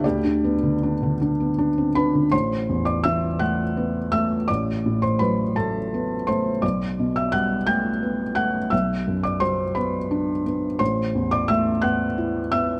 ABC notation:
X:1
M:6/8
L:1/16
Q:3/8=57
K:Ador
V:1 name="Felt piano"
[Gd]6 z4 [Bb]2 | [cc']3 [dd'] [ee']2 [ff']4 [ee']2 | [dd']3 [cc'] [Bb]2 [Aa]4 [cc']2 | [dd']3 [ee'] [ff']2 [gg']4 [ff']2 |
[ee']3 [dd'] [cc']2 [Bb]4 z2 | [cc']3 [dd'] [ee']2 [ff']4 [ee']2 |]
V:2 name="Felt piano"
[D,,D,] D B, D, D D, D B, D C D D, | A,,,2 E,,2 E,2 A,2 B,2 A,2 | A,,,2 A,,2 F,2 A,2 B,2 A,2 | B,,,2 B,,2 G,2 A,2 B,2 A,2 |
B,,,2 F,,2 F,2 B,2 D2 B,2 | A,,,2 E,,2 A,2 B,2 E2 B,2 |]